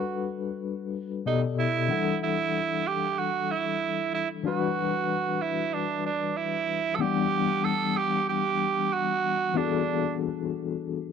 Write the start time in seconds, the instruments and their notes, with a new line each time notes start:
Already playing: tine electric piano G3 D4 F#4 A4 B4, tenor saxophone F#4
1.25 tine electric piano B2 B3 G4 A4 D5 D#5, tenor saxophone D#4
1.59 tenor saxophone E4
1.88 tine electric piano E3 G3 D4 F#5
1.93 tine electric piano A4
2.23 tenor saxophone E4
2.87 tenor saxophone G4
3.19 tenor saxophone F#4
3.51 tenor saxophone E4
4.15 tenor saxophone E4
4.43 tine electric piano E3 G3 D4 F#4, tenor saxophone F#4
4.48 tine electric piano B4
5.41 tenor saxophone E4
5.74 tenor saxophone D4
6.06 tenor saxophone D4
6.37 tenor saxophone E4
6.95 tine electric piano E3, tenor saxophone A4
7.00 tine electric piano G3 B3 D4 F#5, tenor saxophone G4
7.65 tenor saxophone A4
7.97 tenor saxophone G4
8.29 tenor saxophone G4
8.93 tenor saxophone F#4
9.54 tine electric piano E3 B3 D4 F#4, tenor saxophone D4
9.58 tine electric piano G#4
9.65 tine electric piano A4